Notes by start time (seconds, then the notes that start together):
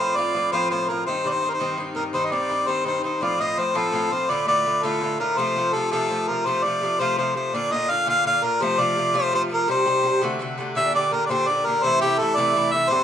0.00 A2 F3 C4 F4 C5
0.16 A2 F3 C4 F4 D5
0.33 A2 F3 C4 F4
0.52 A2 F3 C4 F4 C5
0.70 A2 F3 C4 F4 C5
0.89 A2 F3 C4 F4 A#4
1.06 G2 D#3 C4 D#4 C5
1.24 G2 D#3 C4 D#4 D5
1.30 C5
1.42 G2 D#3 C4 D#4
1.50 A#4
1.54 C5
1.59 G2 D#3 C4 D#4
1.77 G2 D#3 C4 D#4
1.95 G2 D#3 C4 D#4 A#4
2.13 G2 D#3 C4 D#4 C5
2.26 D#5
2.30 G2 D#3 C4 D#4 D5
2.49 G2 D#3 C4 D#4
2.67 G2 D#3 C4 D#4 C5
2.84 G2 D#3 C4 D#4 C5
3.03 G2 D#3 C4 D#4 C5
3.21 A2 F3 C4 F4 D5
3.38 A2 F3 C4 F4 D#5
3.57 A2 F3 C4 F4 C5
3.74 A2 F3 C4 F4 A4
3.92 A2 F3 C4 F4
4.10 A2 F3 C4 F4 C5
4.29 A2 D3 A3 F4 D5
4.46 A2 D3 A3 F4 D5
4.65 A2 D3 A3 F4
4.83 A2 D3 A3 F4 A4
5.01 A2 D3 A3 F4
5.19 A2 D3 A3 F4 A#4
5.37 C3 F3 A3 F4 C5
5.56 C3 F3 A3 F4
5.73 C3 F3 A3 F4 A4
5.91 C3 F3 A3 F4 A4
6.09 C3 F3 A3 F4
6.28 C3 F3 A3 F4 A#4
6.46 C3 F3 A3 F4 C5
6.64 C3 F3 A3 F4 D5
6.81 C3 F3 A3 F4
6.99 C3 F3 A3 F4 C5
7.17 C3 F3 A3 F4 C5
7.35 C3 F3 A3 F4 C5
7.53 A#2 D3 D4 F4 D5
7.71 A#2 D3 D4 F4 D#5
7.88 A#2 D3 D4 F4 F5
8.06 A#2 D3 D4 F4 F5
8.25 A#2 D3 D4 F4 F5
8.42 A#2 D3 D4 F4 A#4
8.60 C3 F3 A3 F4 C5
8.78 C3 F3 A3 F4 D5
8.95 C3 F3 A3 F4
9.13 C3 F3 A3 F4 C5
9.32 C3 F3 A3 F4 C5
9.49 C3 F3 A3 F4 A#4
9.68 C3 G3 D#4 G4 C5
9.85 C3 G3 D#4 G4
10.03 C3 G3 D#4 G4
10.22 C3 D3 A3 F#4
10.39 C3 D3 A3 F#4
10.58 C3 D3 A3 F#4
10.75 A#2 D3 D4 G4 E5
10.93 A#2 D3 D4 G4 D5
11.11 A#2 D3 D4 G4 A#4
11.26 A#2 D3 D5
11.30 D4 G4 C5
11.47 A#2 D3 D4 G4 D5
11.66 A#2 D3 D4 G4 A#4
11.83 C3 E3 A3 E4 C5
12.01 C3 E3 A3 E4 G4
12.19 C3 E3 A3 E4 A4
12.37 C3 E3 A3 E4 D5
12.55 C3 E3 A3 E4
12.72 C3 E3 A3 E4 E5
12.90 G2 D3 C4 G4 C5